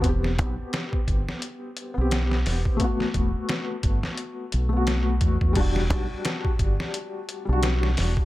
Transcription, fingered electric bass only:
X:1
M:4/4
L:1/16
Q:"Swing 16ths" 1/4=87
K:Em
V:1 name="Fingered electric bass" clef=bass
E,,,2 B,,, z3 G,,, z4 B,,,3 E,,, z | z2 E,,, z3 G,,, z3 B,,,4 E,, E,, | E,,,2 B,,, z3 G,,, z4 B,,,3 E,,, z |]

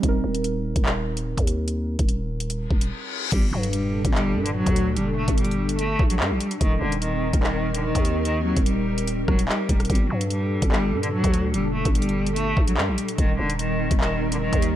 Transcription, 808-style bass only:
X:1
M:4/4
L:1/16
Q:1/4=146
K:Gm
V:1 name="808-style bass" clef=bass
E,,,2 E,,,4- E,,, E,,,6 E,,3- | E,,3 E,,,6- E,,, E,,,2 z4 | G,,,2 G,,4- G,, G,,,3 G,,3 D,,3 | ^F,,,3 G,,,6- G,,, B,,,2 G,, B,,, z2 |
E,,,2 E,,,4- E,,, E,,,6 E,,3- | E,,3 E,,,6- E,,, E,,,2 z2 E,,,2 | G,,,2 G,,4- G,, G,,,3 G,,3 D,,3 | ^F,,,3 G,,,6- G,,, B,,,2 G,, B,,, z2 |
E,,,2 E,,,4- E,,, E,,,6 E,,3 |]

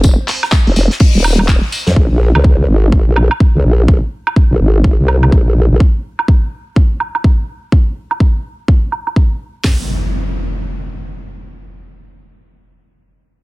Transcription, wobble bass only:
X:1
M:4/4
L:1/16
Q:"Swing 16ths" 1/4=125
K:Bbdor
V:1 name="Wobble bass" clef=bass
F,,, z4 F,,, F,,, z2 E,,,4 z2 F,, | B,,, B,,,2 D,,3 A,,,3 B,,,2 z2 D,, B,,,2 | B,,, z4 B,,, A,,,3 C,,3 B,,,3 B,,, | z16 |
z16 | z16 | z16 |]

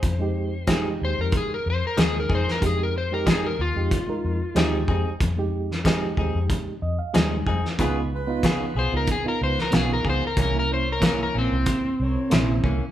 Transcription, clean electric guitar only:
X:1
M:4/4
L:1/8
Q:"Swing 16ths" 1/4=93
K:Fm
V:1 name="Clean electric guitar"
z2 [F,CEA] z3 [F,CEA] [CEA] | z2 [F,CEA] z3 [F,CEA] [CEA] | z2 [F,CEA] [CEA] z2 [F,CEA] [CEA] | [D,_CFA] z [D,CFA] [CFA] z2 [D,CFA] [CFA] |
[C,=E,B,D] z [C,E,B,D] [E,B,D] z2 [C,E,B,D] [E,B,D] |]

